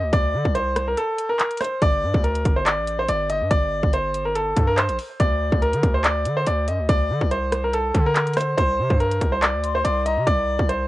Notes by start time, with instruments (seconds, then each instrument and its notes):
Already playing: grand piano D#5
0.03 808-style bass D2
0.13 808-style bass D2, grand piano D5, kick, closed hi-hat
0.34 808-style bass D3
0.45 808-style bass C2, kick
0.55 grand piano C5, closed hi-hat
0.76 cross-stick, closed hi-hat
0.88 grand piano A#4
0.97 grand piano A4, closed hi-hat
1.18 closed hi-hat
1.29 grand piano A#4
1.39 clap, closed hi-hat
1.51 closed hi-hat
1.57 grand piano C5, cross-stick, closed hi-hat, open hi-hat
1.64 closed hi-hat
1.82 808-style bass G1, grand piano D5, kick, closed hi-hat
2.03 808-style bass G2
2.14 808-style bass D2, kick
2.24 grand piano A#4, closed hi-hat
2.35 closed hi-hat
2.45 808-style bass G1, kick, closed hi-hat
2.56 grand piano C5
2.66 grand piano D5, clap, closed hi-hat
2.78 808-style bass A1
2.87 closed hi-hat
2.99 grand piano C5
3.09 808-style bass G1, grand piano D5, closed hi-hat
3.30 grand piano D#5, closed hi-hat
3.41 808-style bass G2
3.51 808-style bass G1, grand piano D5, kick, closed hi-hat
3.83 808-style bass G1, kick
3.93 grand piano C5, closed hi-hat
4.14 closed hi-hat
4.25 grand piano A#4
4.35 grand piano A4, closed hi-hat
4.56 808-style bass G2, kick, closed hi-hat
4.67 grand piano A#4
4.78 grand piano C5, clap, closed hi-hat
4.89 808-style bass A#1, closed hi-hat
4.99 closed hi-hat, open hi-hat
5.20 808-style bass D2, grand piano D5, kick, closed hi-hat
5.52 808-style bass D2, kick
5.62 grand piano A#4, closed hi-hat
5.73 808-style bass D3, closed hi-hat
5.83 808-style bass D2, kick, closed hi-hat
5.94 grand piano C5
6.04 grand piano D5, clap, closed hi-hat
6.25 808-style bass D3, closed hi-hat
6.37 grand piano C5
6.47 808-style bass D2, grand piano D5, closed hi-hat
6.68 808-style bass F#2, grand piano D#5, closed hi-hat
6.79 808-style bass D2
6.89 808-style bass D2, grand piano D5, kick, closed hi-hat
7.10 808-style bass D3
7.21 808-style bass C2, kick
7.31 grand piano C5, closed hi-hat
7.52 cross-stick, closed hi-hat
7.64 grand piano A#4
7.73 grand piano A4, closed hi-hat
7.95 808-style bass D3, kick, closed hi-hat
8.06 grand piano A#4
8.16 clap, closed hi-hat
8.27 closed hi-hat
8.34 grand piano C5, cross-stick, closed hi-hat, open hi-hat
8.41 closed hi-hat
8.58 808-style bass C2, grand piano C5, kick, closed hi-hat
8.79 808-style bass C3
8.90 808-style bass G2, kick
9.00 grand piano A#4, closed hi-hat
9.11 closed hi-hat
9.21 808-style bass C2, kick, closed hi-hat
9.32 grand piano C5
9.42 grand piano D5, clap, closed hi-hat
9.54 808-style bass D2
9.63 flute C6, closed hi-hat
9.75 grand piano C5
9.84 808-style bass C2, grand piano D5, closed hi-hat
10.06 grand piano D#5, flute A#5, closed hi-hat
10.17 808-style bass C3
10.27 808-style bass C2, grand piano D5, kick, closed hi-hat
10.59 808-style bass C2, kick
10.69 grand piano C5, closed hi-hat